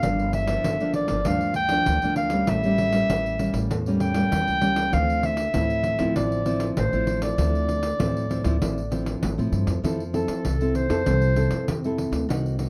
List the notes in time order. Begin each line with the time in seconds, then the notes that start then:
Already playing: F5
0.03 G1 G2 F3 A#3 D4, pandeiro
0.19 pandeiro
0.33 E5, pandeiro
0.48 F3 A#3 D4, pandeiro
0.64 G1 D3, pandeiro
0.80 F3 A#3 D4, pandeiro
0.94 D5, pandeiro
1.08 G1 F3 A#3 D4, pandeiro
1.25 D2 G2 F3 A#3 D4 F5, pandeiro
1.41 pandeiro
1.54 G5, pandeiro
1.69 F3 A#3 D4, pandeiro
1.86 D2 D3, pandeiro
2.02 D2 F3 A#3 D4, pandeiro
2.16 F5, pandeiro
2.30 G3 A#3 C#4, pandeiro
2.47 A1 A2 E5, pandeiro
2.64 G3 A#3 C#4, pandeiro
2.78 pandeiro
2.93 G3 A#3 C#4, pandeiro
3.10 A1 E3, pandeiro
3.26 pandeiro
3.39 G3 A#3 C#4, pandeiro
3.53 A1, pandeiro
3.70 E2 A2, pandeiro
3.86 G3 A#3 C#4, pandeiro
4.00 G5, pandeiro
4.14 G3 A#3 C#4, pandeiro
4.32 E2 E3, pandeiro
4.47 C#2, pandeiro
4.61 G3 A#3 C#4, pandeiro
4.76 pandeiro
4.93 D2 D3 F3 C4 F5, pandeiro
5.10 pandeiro
5.23 E5, pandeiro
5.37 pandeiro
5.54 D2 A2 F3 C4 E4, pandeiro
5.70 pandeiro
5.84 pandeiro
5.99 D2 F3 C4 E4, pandeiro
6.16 A1 D3 D5, pandeiro
6.32 pandeiro
6.45 F3 C4 E4, pandeiro
6.60 pandeiro
6.77 A1 A2 C5, pandeiro
6.93 A1 F3 C4 E4, pandeiro
7.07 pandeiro
7.22 D5, pandeiro
7.38 D2 D3 F3 C4 E4, pandeiro
7.55 pandeiro
7.69 pandeiro
7.83 pandeiro
7.99 D2 A2 F3 C4 E4, pandeiro
8.17 pandeiro
8.30 F3 C4 E4, pandeiro
8.44 D2 F3 C4 E4, pandeiro
8.62 A1 D3 F3 C4 E4, pandeiro
8.78 pandeiro
8.91 F3 C4 E4, pandeiro
9.06 pandeiro
9.22 A1 A2, pandeiro
9.38 A2 F3 C4 E4, pandeiro
9.52 G2, pandeiro
9.67 F2, pandeiro
9.83 F2 F3 C4 E4 A4, pandeiro
10.00 pandeiro
10.13 C4 E4 A4, pandeiro
10.28 F3, pandeiro
10.45 C2 C3, pandeiro
10.61 C4 E4 A4, pandeiro
10.75 C5, pandeiro
10.89 F2 C4 E4 A4, pandeiro
11.06 C2 F3 C4 E4 A4, pandeiro
11.22 pandeiro
11.36 C4 E4 A4, pandeiro
11.51 F2, pandeiro
11.68 F2 C3, pandeiro
11.84 C4 E4 A4, pandeiro
11.98 pandeiro
12.12 D2, pandeiro
12.29 C2 C3 A#3 D#4 F#4, pandeiro
12.46 pandeiro
12.59 A#3 D#4 F#4, pandeiro